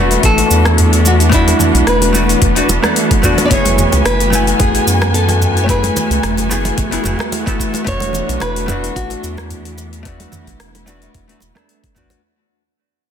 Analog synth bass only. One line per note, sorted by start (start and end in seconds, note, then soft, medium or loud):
0.00 0.17 E1 medium
0.23 0.43 A1 medium
0.50 1.53 E2 medium
1.74 1.83 B1 medium
1.87 2.35 E1 medium
2.42 2.61 E1 medium
2.68 2.79 E1 medium
3.51 3.86 F#1 loud
3.93 4.01 C#2 medium
4.05 4.53 F#1 medium
4.60 4.79 A1 medium
4.87 5.90 F#2 medium
6.10 6.19 C#2 medium
6.23 6.72 F#1 medium
6.78 6.97 F#1 medium
7.05 7.15 F#1 medium
7.87 8.22 E1 loud
8.29 8.37 B1 medium
8.41 8.90 E1 medium
8.96 9.16 A1 medium
9.23 10.26 E2 medium
10.47 10.56 B1 medium
10.59 11.08 E1 medium
11.14 11.34 E1 loud
11.42 11.52 E1 medium
11.96 12.16 A1 medium